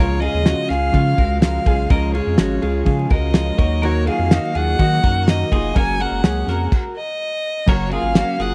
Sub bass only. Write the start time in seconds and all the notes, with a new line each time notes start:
Already playing: C#2
0.34 D#2
0.70 C#2
0.94 C#3
1.19 C#2
1.66 B1
1.90 C#2
2.27 F2
2.39 G#1
2.63 C#2
2.87 C#3
3.11 C#2
3.59 D#2
4.19 F2
4.55 D#2
4.79 D#3
5.04 F#2
5.52 F1
5.76 F#1
6.11 F#1
6.24 C#2
6.47 F2
7.68 F#1
8.03 G#1
8.39 F#1